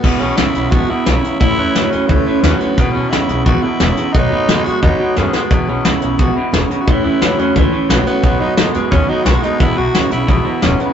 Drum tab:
CC |x-------|--------|--------|--------|
HH |--xxx-xx|x-xxx-xx|x-xxx-xx|x-xxx---|
SD |--o---o-|--o---o-|--o---o-|--o---oo|
BD |o---o---|o---o---|o---o---|o---o---|

CC |--------|--------|--------|--------|
HH |x-xxx-xx|x-xxx-xx|x-xxx-xx|x-xxx-xx|
SD |--o---o-|--o---o-|--o---o-|--o---o-|
BD |o---o---|o---o---|o---o---|o---o---|